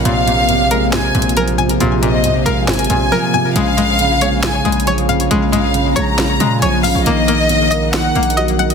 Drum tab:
HH |x-----------x-----------x-----------x-----------x-----------x---x---x---x-----x-----x-----x-----|x-----------x-----------x-----------x-----------x--x--x--x--x-----------------------------------|x-----------x-----------x-----------x-----------x-----------x---x---x---x-----x-----x-----x-----|x-----------x-----------x-----------x-----------x-----------x-----------x-----------o-----------|
SD |------------------------------------------------o-----------------------------------------------|------------------------------------------------o-----------------------------------------------|------------------------------------------------o-----------------------------------------------|------------------------------------------------o-----------------------------------------------|

HH |x-----------x-----------x-----------x-----------x-----------x---x---x---x-----x-----x-----x-----|
SD |------------------------------------------------o-----------------------------------------------|